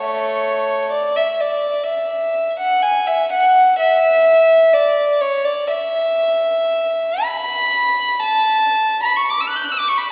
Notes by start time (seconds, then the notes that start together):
Already playing: A3 C#5
0.92 D5
1.16 E5
1.40 D5
1.86 E5
2.60 F#5
2.82 G#5
3.06 E5
3.33 F#5
3.79 E5
4.73 D5
5.20 C#5
5.44 D5
5.68 E5
7.23 B5
8.22 A5
9.03 B5
9.16 C#6
9.30 D6
9.40 E6
9.48 F#6
9.56 G6
9.63 F#6
9.71 E6
9.79 D6
9.88 C#6
9.97 B5